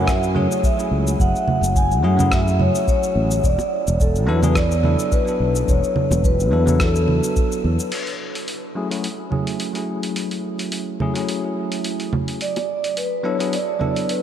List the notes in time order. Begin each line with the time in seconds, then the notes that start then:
Already playing: F#2
0.07 E5, kick, cross-stick, shaker
0.23 shaker
0.35 F#3 A3 C#4 E4 G#4 C#5, low conga
0.52 shaker
0.63 E5, kick, shaker
0.77 F#3 A3 C#4 E4 G#4, shaker
0.91 C#2
1.07 shaker
1.19 F#1 F#5, kick, shaker
1.36 shaker
1.48 low conga
1.61 F#1, shaker
1.76 G#5, kick, shaker
1.92 shaker
2.02 F#2 F#3 A3 C#4 E4 G#4 F#5
2.17 F#3 A3 C#4 E4 G#4, low conga, shaker
2.32 E5, kick, cross-stick, shaker
2.48 shaker
2.60 C#5, low conga
2.75 shaker
2.88 C#5, kick, shaker
3.03 shaker
3.15 A1
3.31 shaker
3.43 E1 D5, kick, shaker
3.59 high bongo, shaker
3.88 E1, shaker
4.00 A4, kick, shaker
4.15 shaker
4.26 E2 F#3 B3 D4 E4 A4 B4
4.42 F#3 B3 D4 E4 G#4, low conga, shaker
4.55 D5, kick, cross-stick, shaker
4.71 shaker
4.83 F#3 B3 D4 E4 A4, low conga
4.99 shaker
5.12 B4, kick, shaker
5.25 F#3 B3 D4 E4, shaker
5.29 A4
5.40 B1
5.56 shaker
5.68 E1 C#5, kick, shaker
5.84 shaker
5.96 low conga
6.11 E1, high bongo, shaker
6.24 B4, kick, shaker
6.40 shaker
6.51 E2 F#3 B3 D4 E4 A4
6.66 F#3 B3 D4 E4 A4, low conga, shaker
6.80 A4, kick, cross-stick, shaker
6.95 shaker
7.08 low conga
7.23 shaker
7.36 kick, shaker
7.52 shaker
7.64 E2
7.79 shaker
7.92 open hi-hat, crash
8.07 open hi-hat
8.35 open hi-hat
8.48 open hi-hat
8.75 F#3 A3 C#4 E4 G#4
8.90 F#3 A3 C#4 E4 F#4, open hi-hat
9.04 open hi-hat
9.31 F#3 A3 C#4 E4 G#4, low conga
9.47 open hi-hat
9.60 open hi-hat
9.74 F#3 A3 C#4 E4 G#4, open hi-hat
10.03 open hi-hat
10.16 open hi-hat
10.31 open hi-hat
10.59 open hi-hat
10.72 open hi-hat
11.00 F#3 A3 C#4 E4 G#4, low conga
11.14 F#3 A3 C#4 E4 G#4, open hi-hat
11.29 open hi-hat
11.72 open hi-hat
11.84 open hi-hat
12.00 open hi-hat
12.13 low conga
12.28 open hi-hat
12.41 D5, open hi-hat
12.56 open hi-hat, high bongo
12.84 open hi-hat
12.97 B4, open hi-hat
13.23 F#3 B3 D4 E4 A4 C#5
13.39 F#3 B3 D4 E4 G#4, open hi-hat
13.53 D5, open hi-hat
13.79 F#3 B3 D4 E4 A4, low conga
13.96 open hi-hat
14.09 B4, open hi-hat